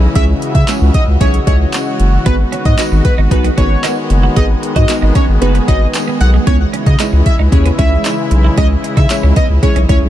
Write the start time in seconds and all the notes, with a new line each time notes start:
Already playing: C#3 E3 G#3 E4
0.15 C#2 G#3 C#4 E4 F#4 G#4 C#5 E5, kick, closed hi-hat
0.42 closed hi-hat
0.55 C#3 E5, kick, closed hi-hat
0.68 G#3 C#4 E4 G#4 C#5, clap, closed hi-hat, tambourine
0.81 C#2
0.94 D#5, kick, closed hi-hat
1.08 C#2
1.21 B1 G#3 C#4 E4 G#4 C#5, kick, closed hi-hat
1.34 closed hi-hat
1.47 C#2 G#3 C#4 E4 G#4 C#5 D#5, kick, closed hi-hat
1.73 clap, closed hi-hat, tambourine
2.00 F#1, closed hi-hat
2.26 G#1 D#3 G#3 B3 D#4 F#4 G#4 B4, kick, closed hi-hat
2.52 C#4, closed hi-hat
2.65 G#2 D#5, muted clean electric guitar stroke, kick, closed hi-hat
2.78 B3 D#4 F#4 G#4 B4, clap, closed hi-hat, tambourine
2.92 G#1, muted clean electric guitar stroke
3.05 B4, kick, closed hi-hat
3.18 G#1 D#4
3.31 B1 B3 D#4 F#4 G#4 B4, muted clean electric guitar stroke, kick, closed hi-hat
3.44 B3, closed hi-hat
3.57 G#1 B3 C#4 D#4 F#4 G#4 B4 C#5, kick, closed hi-hat
3.84 D#4, clap, closed hi-hat, tambourine
4.10 F#1, muted clean electric guitar stroke, closed hi-hat
4.23 F#4
4.36 G#1 B3 D#4 F#4 G#4 B4 D#5, kick, closed hi-hat
4.63 muted clean electric guitar stroke, closed hi-hat
4.76 G#2 F#4 D#5, kick, closed hi-hat
4.89 B3 D#4 F#4 G#4 A#4, muted clean electric guitar stroke, clap, closed hi-hat, tambourine
5.02 G#1 D#4
5.15 C#4 C#5, kick, closed hi-hat
5.28 G#1
5.41 F#1 B3 D#4 F#4 G#4 B4, muted clean electric guitar stroke, closed hi-hat
5.55 B3, closed hi-hat
5.68 G#1 B3 C#4 D#4 F#4 G#4 B4 D#5, kick, closed hi-hat
5.94 clap, closed hi-hat, tambourine
6.08 B3
6.21 B1 F#5, muted clean electric guitar stroke, closed hi-hat
6.34 G#3
6.47 C#2 C#3 E3 G#3 B3 C#4 E4 G#4 C#5, kick, closed hi-hat
6.73 C#4, closed hi-hat
6.86 C#3 D#5, muted clean electric guitar stroke, kick, closed hi-hat
6.99 G#3 C#4 D#4 E4 G#4 C#5, clap, closed hi-hat, tambourine
7.13 C#2, muted clean electric guitar stroke
7.26 E5, kick, closed hi-hat
7.39 C#2 D#4
7.52 D#2 G#3 C#4 E4 G#4 C#5, muted clean electric guitar stroke, kick, closed hi-hat
7.66 B3, closed hi-hat
7.78 C#2 G#3 C#4 E4 G#4 C#5 E5, kick, closed hi-hat
8.05 D#4, clap, closed hi-hat, tambourine
8.31 B1, muted clean electric guitar stroke, closed hi-hat
8.45 E4
8.57 C#2 G#3 C#4 E4 G#4 C#5 D#5, kick, closed hi-hat
8.84 muted clean electric guitar stroke, closed hi-hat
8.97 C#3 D#4 E5, kick, closed hi-hat
9.10 G#3 C#4 E4 G#4 C#5, muted clean electric guitar stroke, clap, closed hi-hat, tambourine
9.23 C#2 C#4
9.36 B3 D#5, kick, closed hi-hat
9.50 C#2
9.63 G#3 C#4 E4 G#4 C#5, muted clean electric guitar stroke, kick, closed hi-hat
9.76 B1 C#4, closed hi-hat
9.89 C#2 G#3 C#4 E4 G#4 C#5, kick, closed hi-hat
10.02 B1